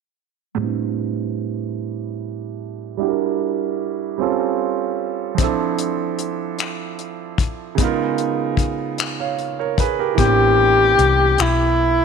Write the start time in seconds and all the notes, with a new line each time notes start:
0.55 A2 G3 C4
0.61 D4 E4 B4
2.97 G3 D4 E4 F#4
3.02 G4
3.08 A#4
4.18 G3 C4 C#4 F4
4.22 A4
5.35 F3 C4, kick, closed hi-hat
5.39 D4 E4
5.44 A4
5.78 closed hi-hat
6.19 closed hi-hat
6.59 finger snap, closed hi-hat
6.99 closed hi-hat
7.38 kick, closed hi-hat
7.75 C#3 G#3 B3, kick, closed hi-hat
7.81 D#4 F4 A#4
8.18 closed hi-hat
8.57 kick, closed hi-hat
8.98 finger snap, closed hi-hat
9.20 C#5 F5
9.39 closed hi-hat
9.59 A#4 C#5
9.78 G#4 B4, kick, closed hi-hat
9.99 G4 A#4
10.15 A1 E3 B3, kick, closed hi-hat
10.19 C4 D4 G4
10.24 G4
10.99 C2, closed hi-hat
11.38 B1 E4, finger snap, closed hi-hat